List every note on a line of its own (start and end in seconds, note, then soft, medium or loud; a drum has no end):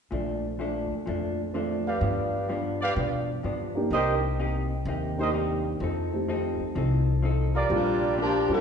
0.11 0.87 A#1 medium
0.11 0.45 A#2 soft
0.11 0.46 F3 soft
0.11 0.46 A3 soft
0.11 0.46 D4 soft
0.59 0.93 A#2 medium
0.59 0.93 F3 medium
0.59 0.94 A3 medium
0.59 0.94 D4 medium
0.91 muted upright bass stroke soft
1.06 1.98 F2 medium
1.06 1.40 A#2 soft
1.06 1.41 F3 soft
1.06 1.41 A3 soft
1.06 1.41 D4 soft
1.53 1.88 A#2 medium
1.53 1.88 F3 medium
1.53 1.88 A3 medium
1.53 1.83 C4 soft
1.53 1.83 D4 soft
1.53 1.89 D4 medium
1.53 1.83 F4 soft
1.53 1.83 A4 soft
1.86 2.46 G4 medium
1.86 2.46 B4 medium
1.86 2.46 D5 medium
1.86 2.46 F5 medium
2.01 2.35 G2 soft
2.01 2.92 G2 medium
2.01 2.35 F3 soft
2.01 2.36 B3 soft
2.01 2.36 D4 soft
2.49 2.82 G2 medium
2.49 2.83 F3 medium
2.49 2.83 B3 medium
2.49 2.84 D4 medium
2.81 2.92 G4 medium
2.81 2.92 B4 medium
2.81 2.92 D5 medium
2.81 2.92 F5 medium
2.96 3.30 G2 soft
2.96 3.41 B2 medium
2.96 3.30 F3 soft
2.96 3.31 B3 medium
2.96 3.32 D4 soft
3.43 3.77 G2 soft
3.43 3.88 G2 medium
3.43 3.78 F3 medium
3.43 3.78 B3 medium
3.43 3.78 D4 medium
3.75 3.90 A#3 medium
3.75 3.90 D4 medium
3.75 3.90 D#4 medium
3.75 3.90 G4 medium
3.90 4.82 C2 medium
3.90 4.25 C3 soft
3.90 4.25 A#3 soft
3.90 4.26 D#4 soft
3.90 4.13 G4 medium
3.90 4.26 G4 soft
3.90 4.13 A#4 medium
3.90 4.14 C5 medium
3.90 4.13 D#5 medium
4.39 4.73 C3 medium
4.39 4.73 A#3 medium
4.39 4.73 D#4 medium
4.39 4.73 G4 medium
4.85 5.77 D#2 medium
4.85 5.20 C3 soft
4.85 5.21 A#3 soft
4.85 5.21 D#4 soft
4.90 5.22 G4 soft
5.18 5.78 A#3 soft
5.18 5.78 D4 soft
5.18 5.78 D#4 soft
5.18 5.29 G4 medium
5.18 5.79 G4 soft
5.18 5.29 A#4 medium
5.18 5.29 C5 medium
5.18 5.30 D#5 medium
5.33 5.67 C3 soft
5.33 5.67 A#3 medium
5.33 5.68 D#4 medium
5.33 5.68 G4 medium
5.80 6.56 F2 medium
5.80 6.14 F3 soft
5.80 6.15 C4 soft
5.80 6.16 D#4 soft
5.80 6.16 A4 soft
6.13 6.73 A3 soft
6.13 6.73 C4 soft
6.13 6.73 D#4 soft
6.13 6.74 G4 soft
6.28 6.62 F3 medium
6.28 6.62 C4 medium
6.28 6.63 D#4 medium
6.28 6.63 A4 medium
6.60 muted upright bass stroke soft
6.75 7.67 C2 medium
6.75 7.09 F3 soft
6.75 7.10 C4 soft
6.75 7.10 D#4 soft
6.75 7.10 A4 soft
7.22 7.56 F3 soft
7.22 7.57 C4 medium
7.22 7.58 D#4 medium
7.22 7.58 A4 medium
7.54 8.15 F4 medium
7.54 8.15 G4 medium
7.54 8.15 A#4 medium
7.54 8.15 D5 medium
7.70 8.46 A#1 medium
7.70 8.04 A#2 soft
7.70 7.99 G3 medium
7.70 8.05 G3 soft
7.70 8.16 G3 medium
7.70 8.16 A#3 medium
7.70 7.99 C4 soft
7.70 8.00 D4 soft
7.70 8.05 D4 soft
7.70 8.16 D4 medium
7.70 8.00 F4 medium
7.70 8.05 F4 soft
7.74 8.17 F4 medium
8.18 8.52 A#2 medium
8.18 8.49 F3 medium
8.18 8.52 G3 medium
8.18 8.49 A#3 medium
8.18 8.52 D4 medium
8.18 8.49 D4 medium
8.18 8.52 F4 medium
8.18 8.49 G4 medium
8.48 8.61 F2 medium
8.48 8.61 G3 medium
8.48 8.61 C4 soft
8.48 8.61 D4 soft
8.48 8.61 F4 medium
8.53 8.61 D4 medium
8.53 8.61 F4 medium
8.53 8.61 A#4 medium